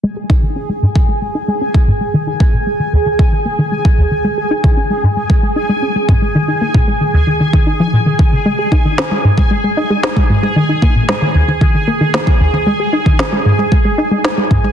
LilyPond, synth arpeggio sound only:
\new Staff \with { instrumentName = "Synth arpeggio sound" } { \clef bass \time 4/4 \key dis \minor \tempo 4 = 114 gis16 gis'16 dis'16 dis16 cis'16 gis16 gis,16 gis16 gis16 gis16 dis'16 gis16 cis'16 gis16 gis,16 gis16 | dis16 dis'16 ais16 ais,16 gis16 dis16 dis,16 dis16 dis16 dis16 ais16 dis16 gis16 dis16 dis,16 dis16 | gis16 gis'16 dis'16 dis16 cis'16 gis16 gis,16 gis16 gis16 gis16 dis'16 gis16 cis'16 gis16 gis,16 gis16 | dis16 dis'16 ais16 ais,16 gis16 dis16 dis,16 dis16 dis16 dis16 dis'16 eis16 ais,16 dis16 dis16 cis16 |
gis16 gis'16 dis'16 dis16 cis'16 gis16 gis,16 gis16 gis16 gis16 dis'16 gis16 dis'16 gis16 gis,16 gis16 | dis16 dis'16 ais16 ais,16 gis16 dis16 dis,16 dis16 dis16 dis16 ais16 dis16 ais16 dis16 dis,16 dis16 | gis16 gis'16 dis'16 dis16 cis'16 gis16 gis,16 gis16 gis16 gis16 dis'16 gis16 dis'16 gis16 gis,16 gis16 | }